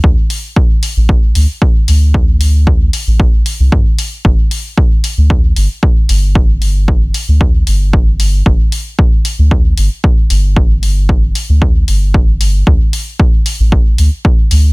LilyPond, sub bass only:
\new Staff \with { instrumentName = "Sub bass" } { \clef bass \time 4/4 \key g \dorian \tempo 4 = 114 d,16 r4. a,,8. d,16 r8. d,8~ | d,4. r16 a,,8. r16 c,16 g,16 r8. | g,,16 r4. d,8. g,,16 r8. g,,8~ | g,,4. r16 d,8. g,,4. |
g,,16 r4. d,8. g,,16 r8. g,,8~ | g,,4. r16 d,8. g,,4. | d,16 r4. a,,8. d,16 r8. d,8 | }